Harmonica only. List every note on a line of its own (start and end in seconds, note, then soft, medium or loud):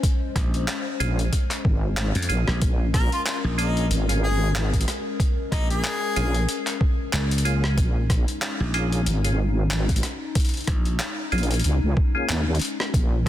2.94 3.09 A#4 medium
3.13 3.21 F4 medium
3.27 3.38 F4 medium
3.59 3.86 D#4 medium
4.23 4.51 G#4 medium
5.52 5.67 D#4 medium
5.70 6.60 G#4 loud